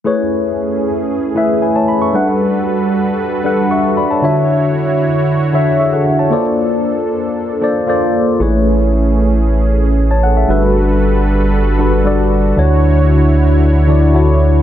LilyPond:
<<
  \new Staff \with { instrumentName = "Tine electric piano" } { \time 4/4 \key a \major \tempo 4 = 115 << { r2. <b' gis''>16 <cis'' a''>16 b''16 <e'' cis'''>16~ | <e'' cis'''>16 r2 r8. <e'' cis'''>8 <d'' b''>16 <cis'' a''>16~ | <cis'' a''>16 r2 r8. <gis' e''>16 <a' fis''>8 <cis'' a''>16~ | <cis'' a''>16 r2. r8. |
r2. r16 <cis'' a''>16 <a' fis''>16 <gis' e''>16~ | <gis' e''>16 r2. r8. | r1 | } \\ { <a e' gis' b' cis''>4. r4 <a e' gis' b' e''>8 r4 | <g d' a' b' fis''>4. r4 <g d' a' b' fis''>8 r4 | <d d' f' fis' cis'' e''>4. r4 <d d' fis' cis'' e''>8 r4 | <bes f' a' c'' d''>4. r4 <bes f' a' c'' d''>8 <bes f' a' c'' d''>4 |
<a e' gis' b' cis''>4. r2 r8 | <g d' fis' a' b'>4. r4 <g d' fis' a' b'>8 <g d' fis' a' d''>4 | <d d' e' fis' cis''>4. r4 <d d' e' fis' d''>8 <d d' e' fis' cis''>4 | } >> }
  \new Staff \with { instrumentName = "Analog synth pad" } { \time 4/4 \key a \major <a cis' gis'>1 | <g fis' a' b'>1 | <d e' fis' cis''>1 | <bes d' a'>1 |
<a cis' gis'>1 | <g fis' a' b'>1 | <d e' cis''>1 | }
  \new Staff \with { instrumentName = "Analog synth bass" } { \clef bass \time 4/4 \key a \major r1 | r1 | r1 | r1 |
a,,1 | g,,1 | d,1 | }
>>